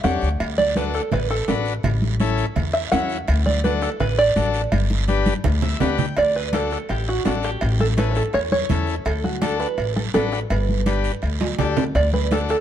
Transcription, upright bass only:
0.04 E2
0.22 D2
0.40 D2
1.12 A1
1.48 A1
1.84 A1
2.56 E2
2.93 E2
3.28 D2
4.00 A1
4.36 A1
4.72 G1
5.45 D2
5.81 D2
6.17 D2
6.90 A1
7.26 A1
7.62 A1
8.34 E2
8.70 E2
9.06 D2
9.78 A1
10.14 A1
10.50 G1
11.23 D2
11.59 D2
11.95 D2

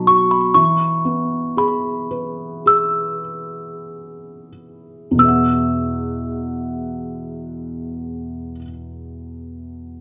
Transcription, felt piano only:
Already playing: B2 F#3 D#4
0.07 F#4
0.55 E3
1.05 B3
1.57 G#4
2.11 B4
2.66 G#4
5.11 E2 B2
5.18 B3 G#4
5.25 E5 F#5

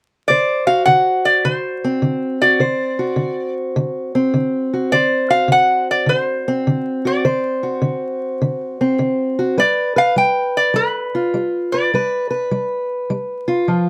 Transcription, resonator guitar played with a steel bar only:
0.28 D5
0.67 F5
0.85 F#5
1.25 D5
1.45 C5
2.42 D5
4.92 D5
5.30 F5
5.52 F#5
5.91 D5
6.09 C5
7.07 D5
9.60 D5
9.98 F5
10.18 G5
10.57 D5
10.76 B4
11.72 D5

